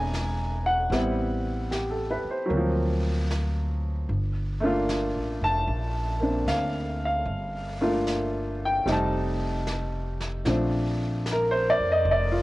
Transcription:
Already playing: E1 G#3 B3 C4 D4 G#5 A#5
0.14 snare, hi-hat pedal
0.66 F#5
0.90 A1 G3 B3 C4 E4, brush sweep, snare
1.71 G4, snare, hi-hat pedal
1.91 A4
2.11 B4
2.24 muted upright bass stroke
2.31 C5
2.46 F#3 A#3
2.50 D2 C4, brush sweep
2.57 F3
3.31 snare, hi-hat pedal
4.09 G1, brush sweep
4.60 A3 A#3 D4
4.65 F4
4.89 snare, hi-hat pedal
5.16 A1
5.41 F1 A5
5.67 A#1, brush sweep
6.20 A#3 C4 D4
6.46 D2 F5, snare, hi-hat pedal
7.05 F5
7.25 G1, brush sweep
7.81 A3 A#3 D4 F4
8.07 snare, hi-hat pedal
8.65 G5
8.86 F1 G3 A3 C4 D#4, brush sweep, snare
8.92 A5
9.67 snare, hi-hat pedal
10.20 snare
10.45 A#1 F3 A3 C4 D4, brush sweep, snare
11.26 snare, hi-hat pedal
11.32 A#4
11.51 C5
11.70 D5
11.80 F2
11.92 D#5
12.05 F1, brush sweep
12.11 D5
12.32 F4

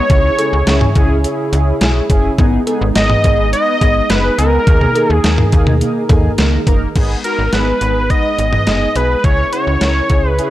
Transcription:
Already playing: C#5
0.10 C#2 C#3 C#4 E4 G#4, kick, closed hi-hat
0.39 C#4 E4 G#4, closed hi-hat, cowbell
0.53 C#2
0.67 C#2 C#4 E4 G#4, snare, closed hi-hat
0.81 mid tom
0.95 C#2 C#4 E4 G#4, kick, closed hi-hat
1.24 C#4 E4 G#4, closed hi-hat
1.53 C#2 C#4 E4 G#4, closed hi-hat
1.81 B1 C#4 E4 G#4, snare, closed hi-hat
2.10 F#1 C#4 E4 G#4, kick, closed hi-hat
2.38 G#1 G#3 B3 D#4 G#4, kick, closed hi-hat
2.67 B3 D#4 G#4, closed hi-hat, cowbell
2.81 G#1
2.95 G#1 B3 D#4 G#4 D#5, snare, closed hi-hat
3.10 mid tom
3.24 G#1 B3 D#4 G#4, kick, closed hi-hat
3.53 B3 D#4 B4 D#5, closed hi-hat
3.81 G#1 B3 D#4 G#4, kick, closed hi-hat
4.10 F#1 B3 D#4 G#4 B4, snare, closed hi-hat
4.38 C#2 B3 D#4 G#4 A#4, closed hi-hat
4.67 D#2 D#3 A#3 D#4 G#4 A#4, kick, closed hi-hat
4.81 mid tom
4.95 A#3 D#4 G#4, closed hi-hat, cowbell
5.10 D#2
5.14 G#4
5.24 D#2 A#3 D#4 G#4, snare, closed hi-hat
5.38 mid tom
5.52 D#2 A#3 D#4 G#4, kick, closed hi-hat
5.67 mid tom
5.81 A#3 D#4 G#4, closed hi-hat
6.09 D#2 A#3 D#4 G#4, kick, closed hi-hat, mid tom, cowbell
6.38 C#2 A#3 D#4 A#4, snare, closed hi-hat
6.67 F#1 A#3 D#4 A#4, kick, closed hi-hat
6.96 G#1 G#3 B3 D#4 G#4, kick, closed hi-hat, crash
7.24 B3 D#4 F#4 A#4, closed hi-hat
7.39 G#1
7.53 G#1 B3 D#4 G#4 B4, snare, closed hi-hat
7.81 G#1 B3 D#4 G#4, closed hi-hat
8.10 B3 D#4 B4 D#5, kick, closed hi-hat
8.38 G#1 B3 D#4 G#4, closed hi-hat
8.53 D#5, mid tom
8.67 F#1 B3 D#4 G#4, snare, closed hi-hat
8.96 B1 B3 D#4 G#4 B4, closed hi-hat
9.24 C#2 C#3 C#4 E4 G#4 C#5, kick, closed hi-hat
9.53 C#4 E4 F#4 C#5, closed hi-hat
9.67 C#2
9.81 C#2 C#4 E4 A#4, snare, closed hi-hat
10.10 C#2 C#4 E4 G#4, kick, closed hi-hat
10.29 B4
10.38 C#4 E4 G#4, closed hi-hat

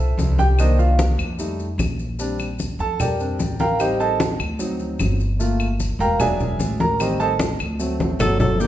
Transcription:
Already playing: C2 E4 A4 C5 E5
0.18 C2, high conga, maracas
0.38 G4 G5, high conga, maracas
0.58 D#3 A#3 D4 D#4 A#4 C5 D#5, high conga, claves, maracas
0.79 F4 F5, high conga, maracas
0.99 high conga, maracas
1.18 F2, high conga, claves, maracas
1.39 G3 A3 D#4, high conga, maracas
1.59 high conga, maracas
1.78 A#1, high conga, claves, maracas
1.99 high conga, maracas
2.19 G3 C4 D4, high conga, maracas
2.39 high conga, claves, maracas
2.59 high conga, maracas
2.79 F2 A4 A5, high conga, maracas
3.00 G4 A#4 D5 G5, high conga, low conga, claves, maracas
3.20 G3 C4 D4, high conga, maracas
3.39 A1, high conga, maracas
3.60 A#4 F5 G5 A#5, high conga, maracas
3.79 G3 C4 D#4 G4 C5 D#5 G5, high conga, claves, maracas
4.00 A4 C5 D#5 A5, high conga, maracas
4.20 high conga, maracas
4.39 D2, high conga, claves, maracas
4.59 F#3 C4 D#4, high conga, maracas
4.80 high conga, maracas
4.99 G1, high conga, claves, maracas
5.20 high conga, maracas
5.39 A3 A#3 F4, high conga, maracas
5.60 high conga, claves, maracas
5.80 high conga, maracas
5.99 E1 A#4 F5 G5 A#5, high conga, maracas
6.19 F#3 G#3 D4 G#4 D5 E5 G#5, high conga, low conga, claves, maracas
6.40 high conga, low conga, maracas
6.59 A1, high conga, maracas
6.80 A#4 A#5, high conga, maracas
6.99 D#3 G3 C4 G4 C5 D#5 G5, high conga, claves, maracas
7.20 A4 C5 D#5 A5, high conga, maracas
7.39 high conga, maracas
7.59 D2, high conga, claves, maracas
7.79 F#3 A3 C4, high conga, maracas
7.99 A1, high conga, maracas
8.19 G1 F#3 A4, low conga, claves, maracas
8.40 F#3 A4, low conga, maracas
8.60 A#2 D3 A#3 G4 A#4, high conga, maracas

